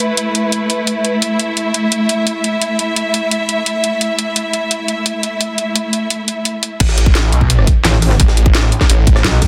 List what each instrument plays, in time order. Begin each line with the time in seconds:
Already playing: string section A3 E4 B4
0.17 closed hi-hat
0.35 closed hi-hat
0.52 closed hi-hat
0.70 closed hi-hat
0.87 closed hi-hat
1.05 closed hi-hat
1.22 string section E5, closed hi-hat
1.39 closed hi-hat
1.57 closed hi-hat
1.74 closed hi-hat
1.92 closed hi-hat
2.09 closed hi-hat
2.27 closed hi-hat
2.44 closed hi-hat
2.62 closed hi-hat
2.79 closed hi-hat
2.96 closed hi-hat
3.14 closed hi-hat
3.31 closed hi-hat
3.49 closed hi-hat
3.66 closed hi-hat
3.84 closed hi-hat
4.01 closed hi-hat
4.19 closed hi-hat
4.36 closed hi-hat
4.53 closed hi-hat
4.71 closed hi-hat
4.88 closed hi-hat
5.06 closed hi-hat
5.23 closed hi-hat
5.41 closed hi-hat
5.58 closed hi-hat
5.76 closed hi-hat
5.93 closed hi-hat
6.10 closed hi-hat
6.28 closed hi-hat
6.45 closed hi-hat
6.63 closed hi-hat
6.80 detuned saw bass A1, kick, closed hi-hat, crash
6.89 snare
6.98 snare, closed hi-hat
7.06 kick
7.15 snare, closed hi-hat
7.32 detuned saw bass B1, closed hi-hat
7.41 kick
7.50 closed hi-hat
7.59 cross-stick
7.67 kick, closed hi-hat
7.85 wobble bass A1, snare, closed hi-hat
7.94 snare
8.02 snare, closed hi-hat, open hi-hat
8.11 cross-stick, snare
8.20 detuned saw bass A1, kick, closed hi-hat
8.28 snare
8.37 closed hi-hat
8.46 kick
8.55 snare, closed hi-hat
8.63 cross-stick
8.72 closed hi-hat
8.81 kick, cross-stick, snare
8.90 detuned saw bass A1, closed hi-hat
9.07 detuned saw bass A1, kick, closed hi-hat
9.16 cross-stick, snare
9.24 wobble bass B1, snare, closed hi-hat
9.33 snare
9.42 kick, snare, closed hi-hat, open hi-hat